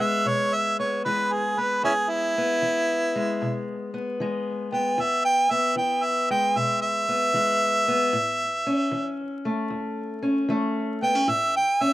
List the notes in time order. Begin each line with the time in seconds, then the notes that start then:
Already playing: E3 B3
0.00 G#3 E5
0.25 B2 C#5
0.54 E5
0.79 B3 C#5
1.05 E3 G#3 B4
1.32 G#4
1.58 B3 B4
1.83 E2 C#4 E4 G#4
2.10 E4
2.38 B3
2.62 E3
3.15 G#3
3.42 B2
3.94 B3
4.20 E3 G#3
4.72 B3 G5
4.98 E2 E5
5.25 G5
5.51 B3 E5
5.76 E3 G5
6.05 E5
6.30 G#3 G5
6.56 B2 E5
6.82 E5
7.09 B3
7.34 E3 G#3
7.88 B3
8.13 A2
8.66 C#4
8.92 E3
9.45 A3
9.70 E2
10.22 C#4
10.49 E3 A3
11.02 B3 G5
11.15 C#4
11.28 A2 E5
11.56 G5
11.81 C#4 E5